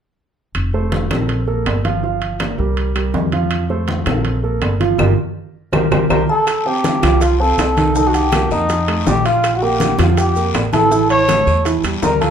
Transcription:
0.55 upright bass F1, high conga, high timbale, claves
0.73 grand piano A3 A4 C5, high conga
0.92 high conga, high timbale, low timbale
1.10 upright bass A#1, grand piano C4 A4 A#4, high conga, high timbale, claves
1.29 high conga, high timbale
1.48 grand piano A#3 A4 A#4, high conga
1.66 upright bass G1, high conga, high timbale, low timbale, claves
1.85 grand piano F3 F4 F5, high conga, high timbale
2.04 grand piano F3 F4 F5, high conga
2.22 high conga, high timbale
2.40 grand piano A#3 A#4 D5, high conga, high timbale, low timbale, claves
2.58 upright bass C2, grand piano G3 G4 A#4, high conga
2.77 high conga, high timbale
2.95 grand piano G3 G4 A#4, high conga, high timbale, claves
3.14 upright bass F2, high conga, low timbale
3.32 grand piano F3 F4 F5, high conga, high timbale
3.51 high conga, high timbale, claves
3.70 grand piano A3 A4 C5, high conga
3.88 high conga, high timbale, low timbale
4.06 upright bass A#1, grand piano C4 A4 A#4, high conga, high timbale, claves
4.25 high conga, high timbale
4.43 grand piano A#3 A4 A#4, high conga
4.62 upright bass G1, high conga, high timbale, low timbale, claves
4.80 grand piano F3 F4 F5, high conga, high timbale
4.98 upright bass G1, grand piano F4 G4 A#4, high conga, high timbale, claves
5.72 upright bass C2, grand piano G4 A#4 C5, high conga, high timbale, claves
5.91 upright bass C2, grand piano G4 A#4 C5, high conga, high timbale, claves
6.10 upright bass C2, grand piano G4 A#4 C5, trumpet A#4, kalimba A#5, high conga, high timbale, claves
6.29 trumpet A4, kalimba A5
6.47 high bongo, high conga, high timbale, long guiro, claves, maracas
6.66 grand piano C4 C5, trumpet G4, kalimba G5, high bongo, high conga
6.84 high bongo, high conga, high timbale, low timbale, short guiro, maracas
7.03 upright bass C2, grand piano F3 F4, high bongo, high conga, high timbale, short guiro, claves, maracas
7.21 trumpet F4, kalimba F5, high bongo, high conga, high timbale, long guiro, maracas
7.40 grand piano C4 C5, trumpet A4, kalimba A5, high bongo, high conga
7.58 upright bass C2, high bongo, low bongo, high conga, high timbale, low timbale, short guiro, claves, maracas
7.77 grand piano D#3 D#4, high conga, high timbale, short guiro, maracas
7.95 grand piano D#3 D#4, trumpet A4, kalimba A5, high bongo, high conga, long guiro, maracas
8.07 trumpet F#4, kalimba F#5
8.14 trumpet G4, kalimba G5, high conga, high timbale, maracas
8.32 grand piano A#3 A#4, high bongo, high conga, high timbale, low timbale, short guiro, claves, maracas
8.51 upright bass F2, trumpet D#4, kalimba D#5, high bongo, high conga, short guiro, maracas
8.69 grand piano F3 F4, high bongo, high conga, high timbale, long guiro, maracas
8.88 grand piano A3 A4, high bongo, high conga, high timbale, claves
9.07 upright bass A#1, trumpet G4, kalimba G5, high bongo, low bongo, high conga, low timbale, short guiro, maracas
9.25 grand piano F4 F5, trumpet F4, kalimba F5, high bongo, high timbale, short guiro, maracas
9.44 high bongo, high conga, high timbale, long guiro, claves, maracas
9.55 trumpet F#4, kalimba F#5
9.62 grand piano A#3 A#4, trumpet G4, kalimba G5, high bongo, high conga
9.80 high bongo, high conga, high timbale, low timbale, short guiro, maracas
9.99 upright bass F2, grand piano F3 F4, high bongo, high conga, high timbale, short guiro, claves, maracas
10.17 trumpet G4, kalimba G5, high bongo, high conga, high timbale, long guiro, maracas
10.36 grand piano A#3 A#4, high bongo, high conga, maracas
10.54 upright bass A1, high bongo, low bongo, high conga, high timbale, low timbale, short guiro, claves, maracas
10.73 grand piano E3 E4, trumpet A4, kalimba A5, high conga, high timbale, short guiro, maracas
10.91 grand piano E3 E4, high bongo, high conga, long guiro, maracas
11.10 trumpet C#5, kalimba C#6, high conga, high timbale
11.28 grand piano A3 A4, high bongo, high conga, high timbale, low timbale, short guiro, claves, maracas
11.47 upright bass E2, high bongo, high conga, short guiro, maracas
11.65 grand piano E3 E4, high bongo, high conga, high timbale, long guiro, maracas
11.84 upright bass E2, grand piano G3 G4, high bongo, high conga, high timbale, claves, maracas
12.02 upright bass D2, trumpet A#4, kalimba A#5, high bongo, low bongo, high conga, low timbale, short guiro, maracas
12.21 grand piano F4 F5, trumpet A4, kalimba A5, high bongo, high conga, high timbale, short guiro, maracas

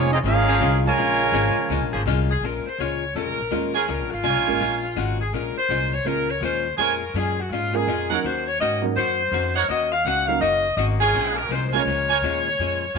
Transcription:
Already playing: upright bass F1, hollow-body jazz guitar A#2 G#3 C#4 F4
0.13 trumpet section C4 F4 G#4 D#5, trombone section D#4
0.24 upright bass G#1, hollow-body jazz guitar A#2 G#3 C#4 F4, trombone section G#3 C#4 F4, trumpet section C#4 G#4 A#4 F5
0.47 saxophone section F3 A#3 C#4 G#4
0.60 upright bass C2, hollow-body jazz guitar A#2 G#3 C#4 F4
0.85 trombone section C#3 F3 G#3, trumpet section F4 A#4 C#5 G#5
0.97 upright bass A#1, hollow-body jazz guitar A#2 G#3 C#4 F4
1.32 upright bass G#1, hollow-body jazz guitar A#2 G#3 C#4 F4
1.56 muted upright bass stroke
1.69 upright bass C#2, hollow-body jazz guitar A#2 G#3 C#4 F4
1.81 upright bass A#1
1.92 upright bass G#1, saxophone section F3 A#3 C#4 G#4
2.05 upright bass C2, hollow-body jazz guitar A#2 G#3 C#4 F4
2.31 saxophone section G#4
2.41 upright bass A#1, hollow-body jazz guitar A#2 G#3 C#4 F4, saxophone section A#4
2.65 saxophone section C5, muted upright bass stroke
2.78 upright bass C#2, hollow-body jazz guitar A#2 G#3 C#4 F4, saxophone section C#5
3.14 upright bass F2, hollow-body jazz guitar A#2 G#3 C#4 F4, saxophone section A#4
3.27 upright bass C#2
3.39 upright bass A#1
3.51 upright bass D#2, hollow-body jazz guitar A#2 G#3 C#4 F4, grand piano G#3 A#3 C#4 F4 A#4
3.74 trumpet section F4 A#4 C#5 G#5, saxophone section G#4
3.87 upright bass C#2, hollow-body jazz guitar A#2 G#3 C#4 F4, saxophone section A#4
4.00 upright bass A#1
4.11 upright bass G#1, saxophone section F4
4.23 upright bass C2, hollow-body jazz guitar A#2 G#3 C#4 F4, trumpet section F4 A#4 C#5 G#5
4.36 upright bass A#1
4.47 upright bass G#1, grand piano G#3 A#3 C#4 F4 A#4
4.60 upright bass A#1, hollow-body jazz guitar A#2 G#3 C#4 F4
4.96 upright bass G#1, hollow-body jazz guitar A#2 G#3 C#4 F4, saxophone section F#4
5.20 saxophone section G#4
5.33 upright bass A#1, hollow-body jazz guitar A#2 G#3 C#4 F4, saxophone section A#4
5.56 saxophone section C5, muted upright bass stroke
5.69 upright bass C2, hollow-body jazz guitar A#2 G#3 C#4 F4
5.93 saxophone section C#5
6.05 upright bass C#2, hollow-body jazz guitar A#2 G#3 C#4 F4, grand piano G#3 A#3 C#4 F4 A#4, saxophone section A#4
6.29 saxophone section C#5
6.40 upright bass D#2, hollow-body jazz guitar A#2 G#3 C#4 F4, saxophone section C5
6.76 upright bass F2, hollow-body jazz guitar A#2 G#3 C#4, trumpet section F4 A#4 C#5 G#5, saxophone section G#4 A#4
6.80 hollow-body jazz guitar F4
7.14 upright bass F#2, hollow-body jazz guitar A#2 G#3 C#4 F4, saxophone section G#4
7.40 saxophone section F#4
7.49 upright bass G#2, hollow-body jazz guitar A#2 G#3 C#4, saxophone section F4
7.54 hollow-body jazz guitar F4
7.73 grand piano G#3 A#3 C#4 F4 A#4, saxophone section G#4
7.87 upright bass F2, hollow-body jazz guitar A#2 G#3 C#4 F4
8.10 grand piano F#3 A#3 C#4 D#4 F#4, trumpet section D#4 A#4 C#5 F#5, saxophone section A#4
8.23 upright bass D#2, hollow-body jazz guitar D#3 A#3 C#4 F#4, saxophone section C5
8.47 saxophone section C#5
8.60 upright bass G#2, hollow-body jazz guitar D#3 A#3 C#4 F#4, saxophone section D#5
8.82 grand piano F#3 A#3 C#4 D#4 A#4
8.96 upright bass F#2, hollow-body jazz guitar D#3 A#3 C#4 F#4, saxophone section C5
9.31 upright bass F2, hollow-body jazz guitar D#3 A#3 C#4 F#4
9.55 trumpet section D#4 A#4 C#5 F#5, saxophone section C#5
9.68 upright bass D#2, hollow-body jazz guitar D#3 A#3 C#4 F#4, saxophone section D#5
9.91 saxophone section F5
10.05 upright bass C#2, hollow-body jazz guitar D#3 A#3 C#4 F#4, saxophone section F#5
10.27 grand piano F#3 A#3 C#4 D#4 A#4, saxophone section F5
10.40 upright bass F#1, hollow-body jazz guitar D#3 A#3 C#4 F#4, saxophone section D#5
10.76 upright bass G#1, hollow-body jazz guitar D#3 A#3 C#4 F#4, saxophone section D#5
11.01 trumpet section F4 A#4 C#5 G#5, saxophone section G#4
11.13 upright bass A#1, hollow-body jazz guitar A#2 F3 G#3 C#4
11.36 saxophone section A#4
11.49 upright bass C2, hollow-body jazz guitar A#2 F3 G#3 C#4, saxophone section C5
11.67 saxophone section C5
11.73 grand piano G#3 A#3 C#4 F4 A#4, trumpet section F4 A#4 C#5 G#5, saxophone section C#5
11.85 upright bass C#2, hollow-body jazz guitar A#2 F3 G#3 C#4
12.09 trumpet section F4 A#4 C#5 G#5
12.21 upright bass D#2, hollow-body jazz guitar A#2 F3 G#3 C#4
12.59 upright bass F2, hollow-body jazz guitar A#2 F3 G#3 C#4
12.94 upright bass F#2

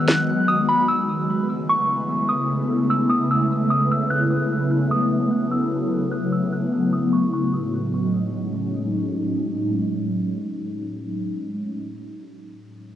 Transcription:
Already playing: ambient pad D#3 F#3 G#3 B3 F#4
0.08 synth bell F#6, snare
0.48 synth bell D#6
0.69 synth bell B5
0.88 ambient pad C#3 A3 B3 E4, synth bell E6
1.69 synth bell C#6
2.29 synth bell D#6
2.90 synth bell E6
3.10 synth bell D#6
3.31 synth bell E6
3.70 synth bell D#6
3.91 synth bell E6
4.10 ambient pad F#3, synth bell F#6
4.92 synth bell D#6
5.52 synth bell E6
6.12 synth bell F#6
6.32 synth bell E6
6.53 synth bell F#6
6.93 synth bell D#6
7.13 synth bell C#6
7.33 ambient pad A2 F#3 G#3 C#4 D#4, synth bell C#6

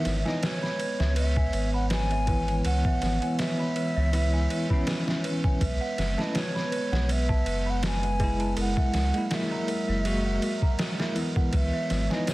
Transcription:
Already playing: tine electric piano D#3 E3 B3, analog synth pad G#3 B3 C#5, flute E5, celesta E5
0.05 sub bass G#1, celesta B4, snare, ride
0.25 tine electric piano E3 B3 D#4, flute D#5, celesta G#5, snare
0.42 celesta B4, flute C#5, snare, ride
0.63 celesta B5, snare
0.79 celesta B4, ride
1.00 sub bass C#2, celesta E5, snare
1.16 celesta B4, flute E5, ride
1.36 celesta G#5, kick
1.53 sub bass G#1, celesta B4, ride
1.74 flute F#5, celesta B5
1.90 celesta B4, flute G#5, snare, ride
2.11 celesta E5, ride
2.27 tine electric piano E3 B3, celesta B4, kick, ride
2.48 celesta G#5, ride
2.65 sub bass C#2, celesta B4, flute F#5, ride
2.85 celesta E5, kick
3.02 sub bass G#1, celesta B4, snare, ride
3.22 tine electric piano E3 B3, celesta G#5, ride
3.39 celesta B4, flute E5, snare, ride
3.59 celesta B5
3.76 celesta B4, ride
3.96 sub bass C#2, celesta E5
4.13 tine electric piano E3 B3 E4, celesta B4, ride
4.33 celesta G#5
4.50 celesta B4, ride
4.69 tine electric piano E3 B3 C#4, celesta B5, kick
4.87 celesta B4, snare, ride
5.07 celesta E5, snare
5.24 celesta B4, ride
5.44 celesta G#5, kick
5.61 sub bass B1, analog synth pad B3 B4, celesta B4, flute E5, kick, ride
5.81 celesta F#5
5.98 sub bass F#1, celesta B4, snare, ride
6.18 tine electric piano A3 C#4 E4, flute D#5, celesta A5, snare
6.35 celesta B4, flute C#5, snare, ride
6.55 celesta B5, snare
6.72 celesta B4, ride
6.92 sub bass B1, celesta F#5, snare
7.09 celesta B4, flute E5, ride
7.29 celesta A5, kick
7.46 sub bass F#1, celesta B4, ride
7.66 flute F#5, celesta B5
7.83 celesta B4, flute G#5, snare, ride
8.03 celesta F#5, ride
8.20 tine electric piano G#3 E4, celesta B4, kick, ride
8.40 celesta A5, ride
8.57 sub bass F#1, analog synth pad F#3 A#4, celesta A#4, flute F#5, ride
8.77 celesta E5, kick
8.94 sub bass C#2, celesta A#4, snare, ride
9.14 tine electric piano G#3 A#3 E4, celesta F#5, ride
9.31 celesta A#4, flute E5, snare, ride
9.52 celesta A#5
9.68 celesta A#4, ride
9.89 sub bass F#1, celesta E5
10.05 tine electric piano G#3 A#3 F#4, celesta A#4, ride
10.25 celesta F#5
10.42 celesta A#4, ride
10.62 celesta A#5, kick
10.79 celesta A#4, snare, ride
10.99 tine electric piano G#3 A#3 E4, celesta E5, snare
11.16 tine electric piano E3 B3, celesta A#4, ride
11.36 celesta F#5, kick
11.53 sub bass C#2, analog synth pad B3 C#5, celesta B4, flute E5, kick, ride
11.73 celesta E5
11.90 sub bass G#1, celesta B4, snare, ride
12.10 tine electric piano E3 B3 D#4, flute D#5, celesta G#5, snare
12.27 celesta B4, flute C#5, snare, ride, tambourine

